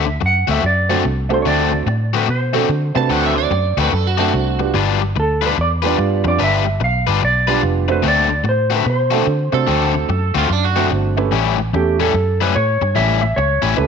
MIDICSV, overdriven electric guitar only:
0, 0, Header, 1, 3, 480
1, 0, Start_track
1, 0, Tempo, 410959
1, 1703, Time_signature, 4, 2, 24, 8
1, 16200, End_track
2, 0, Start_track
2, 0, Title_t, "Overdriven electric guitar"
2, 0, Program_c, 0, 29
2, 554, Note_on_c, 0, 66, 104
2, 564, Note_on_c, 0, 60, 86
2, 571, Note_on_c, 0, 50, 80
2, 571, Note_on_c, 0, 57, 96
2, 726, Note_off_c, 0, 50, 0
2, 729, Note_off_c, 0, 57, 0
2, 734, Note_off_c, 0, 60, 0
2, 734, Note_off_c, 0, 66, 0
2, 1049, Note_on_c, 0, 66, 86
2, 1051, Note_on_c, 0, 60, 79
2, 1060, Note_on_c, 0, 50, 76
2, 1060, Note_on_c, 0, 57, 82
2, 1205, Note_off_c, 0, 50, 0
2, 1209, Note_off_c, 0, 57, 0
2, 1212, Note_off_c, 0, 60, 0
2, 1212, Note_off_c, 0, 66, 0
2, 1698, Note_on_c, 0, 50, 71
2, 1703, Note_on_c, 0, 57, 80
2, 1704, Note_on_c, 0, 60, 80
2, 1715, Note_on_c, 0, 66, 88
2, 1998, Note_off_c, 0, 66, 0
2, 2007, Note_off_c, 0, 60, 0
2, 2008, Note_off_c, 0, 50, 0
2, 2008, Note_off_c, 0, 57, 0
2, 2495, Note_on_c, 0, 66, 105
2, 2505, Note_on_c, 0, 60, 93
2, 2506, Note_on_c, 0, 57, 89
2, 2512, Note_on_c, 0, 50, 85
2, 2652, Note_off_c, 0, 50, 0
2, 2652, Note_off_c, 0, 57, 0
2, 2654, Note_off_c, 0, 60, 0
2, 2662, Note_off_c, 0, 66, 0
2, 2964, Note_on_c, 0, 66, 103
2, 2968, Note_on_c, 0, 60, 96
2, 2975, Note_on_c, 0, 57, 91
2, 2983, Note_on_c, 0, 50, 77
2, 3135, Note_off_c, 0, 50, 0
2, 3135, Note_off_c, 0, 57, 0
2, 3141, Note_off_c, 0, 66, 0
2, 3143, Note_off_c, 0, 60, 0
2, 3616, Note_on_c, 0, 50, 79
2, 3623, Note_on_c, 0, 57, 83
2, 3626, Note_on_c, 0, 60, 76
2, 3629, Note_on_c, 0, 66, 86
2, 3903, Note_off_c, 0, 66, 0
2, 3907, Note_off_c, 0, 60, 0
2, 3908, Note_off_c, 0, 57, 0
2, 3929, Note_off_c, 0, 50, 0
2, 4411, Note_on_c, 0, 66, 108
2, 4413, Note_on_c, 0, 60, 94
2, 4415, Note_on_c, 0, 57, 88
2, 4425, Note_on_c, 0, 50, 82
2, 4574, Note_off_c, 0, 50, 0
2, 4577, Note_off_c, 0, 60, 0
2, 4578, Note_off_c, 0, 57, 0
2, 4581, Note_off_c, 0, 66, 0
2, 4876, Note_on_c, 0, 66, 86
2, 4880, Note_on_c, 0, 60, 81
2, 4888, Note_on_c, 0, 57, 87
2, 4895, Note_on_c, 0, 50, 76
2, 5051, Note_off_c, 0, 50, 0
2, 5051, Note_off_c, 0, 57, 0
2, 5051, Note_off_c, 0, 60, 0
2, 5059, Note_off_c, 0, 66, 0
2, 5537, Note_on_c, 0, 55, 72
2, 5547, Note_on_c, 0, 62, 84
2, 5548, Note_on_c, 0, 65, 77
2, 5550, Note_on_c, 0, 71, 75
2, 5845, Note_off_c, 0, 71, 0
2, 5850, Note_off_c, 0, 55, 0
2, 5850, Note_off_c, 0, 65, 0
2, 5853, Note_off_c, 0, 62, 0
2, 6324, Note_on_c, 0, 71, 90
2, 6329, Note_on_c, 0, 65, 88
2, 6335, Note_on_c, 0, 62, 85
2, 6339, Note_on_c, 0, 55, 77
2, 6492, Note_off_c, 0, 55, 0
2, 6494, Note_off_c, 0, 62, 0
2, 6500, Note_off_c, 0, 71, 0
2, 6502, Note_off_c, 0, 65, 0
2, 6801, Note_on_c, 0, 71, 94
2, 6808, Note_on_c, 0, 65, 89
2, 6817, Note_on_c, 0, 62, 77
2, 6822, Note_on_c, 0, 55, 78
2, 6973, Note_off_c, 0, 55, 0
2, 6975, Note_off_c, 0, 62, 0
2, 6977, Note_off_c, 0, 65, 0
2, 6982, Note_off_c, 0, 71, 0
2, 7461, Note_on_c, 0, 55, 65
2, 7467, Note_on_c, 0, 62, 74
2, 7470, Note_on_c, 0, 65, 80
2, 7476, Note_on_c, 0, 71, 89
2, 7758, Note_off_c, 0, 71, 0
2, 7763, Note_off_c, 0, 65, 0
2, 7766, Note_off_c, 0, 62, 0
2, 7773, Note_off_c, 0, 55, 0
2, 8256, Note_on_c, 0, 71, 102
2, 8261, Note_on_c, 0, 65, 98
2, 8266, Note_on_c, 0, 55, 82
2, 8266, Note_on_c, 0, 62, 81
2, 8422, Note_off_c, 0, 55, 0
2, 8426, Note_off_c, 0, 62, 0
2, 8430, Note_off_c, 0, 71, 0
2, 8432, Note_off_c, 0, 65, 0
2, 8730, Note_on_c, 0, 71, 90
2, 8739, Note_on_c, 0, 65, 92
2, 8746, Note_on_c, 0, 62, 80
2, 8748, Note_on_c, 0, 55, 80
2, 8891, Note_off_c, 0, 55, 0
2, 8896, Note_off_c, 0, 62, 0
2, 8898, Note_off_c, 0, 71, 0
2, 8901, Note_off_c, 0, 65, 0
2, 9373, Note_on_c, 0, 50, 71
2, 9379, Note_on_c, 0, 57, 81
2, 9381, Note_on_c, 0, 60, 83
2, 9384, Note_on_c, 0, 66, 95
2, 9672, Note_off_c, 0, 66, 0
2, 9676, Note_off_c, 0, 60, 0
2, 9685, Note_off_c, 0, 57, 0
2, 9689, Note_off_c, 0, 50, 0
2, 10164, Note_on_c, 0, 66, 98
2, 10173, Note_on_c, 0, 60, 102
2, 10177, Note_on_c, 0, 57, 90
2, 10182, Note_on_c, 0, 50, 85
2, 10331, Note_off_c, 0, 50, 0
2, 10332, Note_off_c, 0, 57, 0
2, 10334, Note_off_c, 0, 60, 0
2, 10338, Note_off_c, 0, 66, 0
2, 10636, Note_on_c, 0, 66, 101
2, 10639, Note_on_c, 0, 60, 81
2, 10643, Note_on_c, 0, 57, 81
2, 10651, Note_on_c, 0, 50, 72
2, 10800, Note_off_c, 0, 50, 0
2, 10807, Note_off_c, 0, 57, 0
2, 10810, Note_off_c, 0, 60, 0
2, 10816, Note_off_c, 0, 66, 0
2, 11293, Note_on_c, 0, 50, 77
2, 11293, Note_on_c, 0, 57, 82
2, 11300, Note_on_c, 0, 60, 83
2, 11306, Note_on_c, 0, 66, 82
2, 11597, Note_off_c, 0, 66, 0
2, 11600, Note_off_c, 0, 60, 0
2, 11603, Note_off_c, 0, 57, 0
2, 11609, Note_off_c, 0, 50, 0
2, 12082, Note_on_c, 0, 66, 105
2, 12086, Note_on_c, 0, 60, 98
2, 12091, Note_on_c, 0, 57, 91
2, 12096, Note_on_c, 0, 50, 73
2, 12244, Note_off_c, 0, 50, 0
2, 12248, Note_off_c, 0, 57, 0
2, 12249, Note_off_c, 0, 60, 0
2, 12254, Note_off_c, 0, 66, 0
2, 12566, Note_on_c, 0, 66, 90
2, 12573, Note_on_c, 0, 60, 87
2, 12579, Note_on_c, 0, 57, 78
2, 12580, Note_on_c, 0, 50, 81
2, 12735, Note_off_c, 0, 57, 0
2, 12737, Note_off_c, 0, 50, 0
2, 12740, Note_off_c, 0, 66, 0
2, 12742, Note_off_c, 0, 60, 0
2, 13215, Note_on_c, 0, 45, 75
2, 13223, Note_on_c, 0, 55, 83
2, 13227, Note_on_c, 0, 61, 81
2, 13230, Note_on_c, 0, 64, 92
2, 13517, Note_off_c, 0, 64, 0
2, 13529, Note_off_c, 0, 45, 0
2, 13529, Note_off_c, 0, 61, 0
2, 13530, Note_off_c, 0, 55, 0
2, 14013, Note_on_c, 0, 64, 99
2, 14016, Note_on_c, 0, 61, 92
2, 14023, Note_on_c, 0, 55, 86
2, 14024, Note_on_c, 0, 45, 86
2, 14170, Note_off_c, 0, 45, 0
2, 14171, Note_off_c, 0, 55, 0
2, 14173, Note_off_c, 0, 61, 0
2, 14176, Note_off_c, 0, 64, 0
2, 14493, Note_on_c, 0, 64, 98
2, 14498, Note_on_c, 0, 61, 89
2, 14501, Note_on_c, 0, 55, 85
2, 14507, Note_on_c, 0, 45, 68
2, 14651, Note_off_c, 0, 45, 0
2, 14654, Note_off_c, 0, 61, 0
2, 14655, Note_off_c, 0, 55, 0
2, 14658, Note_off_c, 0, 64, 0
2, 15129, Note_on_c, 0, 45, 72
2, 15136, Note_on_c, 0, 55, 73
2, 15140, Note_on_c, 0, 61, 82
2, 15146, Note_on_c, 0, 64, 75
2, 15431, Note_off_c, 0, 64, 0
2, 15436, Note_off_c, 0, 61, 0
2, 15439, Note_off_c, 0, 55, 0
2, 15444, Note_off_c, 0, 45, 0
2, 15909, Note_on_c, 0, 64, 113
2, 15913, Note_on_c, 0, 61, 96
2, 15919, Note_on_c, 0, 45, 81
2, 15920, Note_on_c, 0, 55, 83
2, 16072, Note_off_c, 0, 55, 0
2, 16074, Note_off_c, 0, 45, 0
2, 16083, Note_off_c, 0, 64, 0
2, 16084, Note_off_c, 0, 61, 0
2, 16200, End_track
3, 0, Start_track
3, 0, Title_t, "Muted overdriven electric guitar strokes"
3, 77, Note_on_c, 9, 29, 49
3, 194, Note_off_c, 9, 29, 0
3, 241, Note_on_c, 9, 29, 48
3, 358, Note_off_c, 9, 29, 0
3, 740, Note_on_c, 9, 29, 46
3, 857, Note_off_c, 9, 29, 0
3, 1219, Note_on_c, 9, 29, 46
3, 1336, Note_off_c, 9, 29, 0
3, 1522, Note_on_c, 9, 29, 45
3, 1639, Note_off_c, 9, 29, 0
3, 2012, Note_on_c, 9, 29, 53
3, 2129, Note_off_c, 9, 29, 0
3, 2182, Note_on_c, 9, 29, 48
3, 2299, Note_off_c, 9, 29, 0
3, 2666, Note_on_c, 9, 29, 45
3, 2783, Note_off_c, 9, 29, 0
3, 3149, Note_on_c, 9, 29, 46
3, 3265, Note_off_c, 9, 29, 0
3, 3450, Note_on_c, 9, 29, 49
3, 3567, Note_off_c, 9, 29, 0
3, 3917, Note_on_c, 9, 29, 45
3, 4034, Note_off_c, 9, 29, 0
3, 4100, Note_on_c, 9, 29, 46
3, 4217, Note_off_c, 9, 29, 0
3, 4588, Note_on_c, 9, 29, 44
3, 4704, Note_off_c, 9, 29, 0
3, 5065, Note_on_c, 9, 29, 43
3, 5181, Note_off_c, 9, 29, 0
3, 5366, Note_on_c, 9, 29, 51
3, 5483, Note_off_c, 9, 29, 0
3, 5859, Note_on_c, 9, 29, 44
3, 5976, Note_off_c, 9, 29, 0
3, 6024, Note_on_c, 9, 29, 48
3, 6141, Note_off_c, 9, 29, 0
3, 6506, Note_on_c, 9, 29, 47
3, 6623, Note_off_c, 9, 29, 0
3, 6987, Note_on_c, 9, 29, 40
3, 7104, Note_off_c, 9, 29, 0
3, 7293, Note_on_c, 9, 29, 49
3, 7410, Note_off_c, 9, 29, 0
3, 7772, Note_on_c, 9, 29, 52
3, 7888, Note_off_c, 9, 29, 0
3, 7946, Note_on_c, 9, 29, 48
3, 8063, Note_off_c, 9, 29, 0
3, 8436, Note_on_c, 9, 29, 45
3, 8552, Note_off_c, 9, 29, 0
3, 8905, Note_on_c, 9, 29, 50
3, 9022, Note_off_c, 9, 29, 0
3, 9208, Note_on_c, 9, 29, 51
3, 9325, Note_off_c, 9, 29, 0
3, 9686, Note_on_c, 9, 29, 54
3, 9803, Note_off_c, 9, 29, 0
3, 9857, Note_on_c, 9, 29, 50
3, 9974, Note_off_c, 9, 29, 0
3, 10345, Note_on_c, 9, 29, 46
3, 10462, Note_off_c, 9, 29, 0
3, 10814, Note_on_c, 9, 29, 43
3, 10931, Note_off_c, 9, 29, 0
3, 11125, Note_on_c, 9, 29, 58
3, 11242, Note_off_c, 9, 29, 0
3, 11611, Note_on_c, 9, 29, 50
3, 11728, Note_off_c, 9, 29, 0
3, 11785, Note_on_c, 9, 29, 45
3, 11902, Note_off_c, 9, 29, 0
3, 12258, Note_on_c, 9, 29, 48
3, 12375, Note_off_c, 9, 29, 0
3, 12749, Note_on_c, 9, 29, 44
3, 12866, Note_off_c, 9, 29, 0
3, 13054, Note_on_c, 9, 29, 46
3, 13171, Note_off_c, 9, 29, 0
3, 13531, Note_on_c, 9, 29, 51
3, 13648, Note_off_c, 9, 29, 0
3, 13707, Note_on_c, 9, 29, 40
3, 13824, Note_off_c, 9, 29, 0
3, 14184, Note_on_c, 9, 29, 48
3, 14301, Note_off_c, 9, 29, 0
3, 14665, Note_on_c, 9, 29, 47
3, 14782, Note_off_c, 9, 29, 0
3, 14969, Note_on_c, 9, 29, 50
3, 15085, Note_off_c, 9, 29, 0
3, 15446, Note_on_c, 9, 29, 52
3, 15562, Note_off_c, 9, 29, 0
3, 15625, Note_on_c, 9, 29, 44
3, 15741, Note_off_c, 9, 29, 0
3, 16087, Note_on_c, 9, 29, 44
3, 16200, Note_off_c, 9, 29, 0
3, 16200, End_track
0, 0, End_of_file